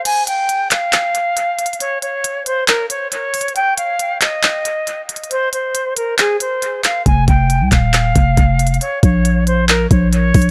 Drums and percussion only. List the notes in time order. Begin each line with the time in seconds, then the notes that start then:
0.05 closed hi-hat, crash
0.27 closed hi-hat
0.49 closed hi-hat
0.71 clap, closed hi-hat
0.93 clap, closed hi-hat
1.15 closed hi-hat
1.37 closed hi-hat
1.59 closed hi-hat
1.66 closed hi-hat
1.73 closed hi-hat
1.80 closed hi-hat
2.02 closed hi-hat
2.24 closed hi-hat
2.46 closed hi-hat
2.68 clap, closed hi-hat
2.90 closed hi-hat
3.12 closed hi-hat
3.34 closed hi-hat, open hi-hat
3.41 closed hi-hat
3.48 closed hi-hat
3.56 closed hi-hat
3.78 closed hi-hat
3.99 closed hi-hat
4.21 clap, closed hi-hat
4.43 clap, closed hi-hat
4.65 closed hi-hat
4.87 closed hi-hat
5.09 closed hi-hat
5.16 closed hi-hat
5.24 closed hi-hat
5.31 closed hi-hat
5.53 closed hi-hat
5.75 closed hi-hat
5.97 closed hi-hat
6.18 clap, closed hi-hat
6.40 closed hi-hat
6.62 closed hi-hat
6.84 clap, closed hi-hat
7.06 kick, closed hi-hat
7.28 kick, closed hi-hat
7.50 closed hi-hat
7.72 kick, clap, closed hi-hat
7.94 clap, closed hi-hat
8.16 kick, closed hi-hat
8.37 kick, closed hi-hat
8.59 closed hi-hat
8.67 closed hi-hat
8.74 closed hi-hat
8.81 closed hi-hat
9.03 kick, closed hi-hat
9.25 closed hi-hat
9.47 closed hi-hat
9.69 clap, closed hi-hat
9.91 kick, closed hi-hat
10.13 closed hi-hat
10.34 kick, closed hi-hat, open hi-hat
10.42 closed hi-hat